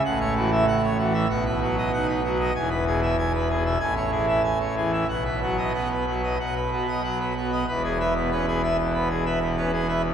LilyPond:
<<
  \new Staff \with { instrumentName = "Pipe organ" } { \time 4/4 \key e \major \tempo 4 = 95 fis''16 cis''16 fis'16 e''16 fis''16 cis''16 fis'16 e''16 fis''16 b'16 fis'16 dis''16 fis''16 b'16 fis'16 dis''16 | gis''16 b'16 gis'16 e''16 gis''16 b'16 gis'16 e''16 gis''16 cis''16 gis'16 e''16 gis''16 cis''16 gis'16 e''16 | fis''16 b'16 fis'16 dis''16 fis''16 b'16 fis'16 dis''16 fis''16 b'16 fis'16 dis''16 fis''16 b'16 fis'16 dis''16 | b'16 gis'16 <b' e''>16 b,16 b'16 gis'16 <b' e''>16 b,16 b'16 gis'16 <b' e''>16 b,16 b'16 gis'16 <b' e''>16 b,16 | }
  \new Staff \with { instrumentName = "Pipe organ" } { \clef bass \time 4/4 \key e \major << { a,8 e8 r8 e8 b,8 fis8 dis'8 fis8 | e,8 b,8 r8 b,8 a,8 e8 r8 e8 | b,8 fis8 b8 fis8 b,8 b8 fis8 b8 | e,8. b16 cis'16 b16 r8 b,16 r8 b16 cis'16 b16 r8 | } \\ { a,,2 b,,2 | e,,2 a,,2 | b,,2 b,,2 | e,,1 | } >> }
>>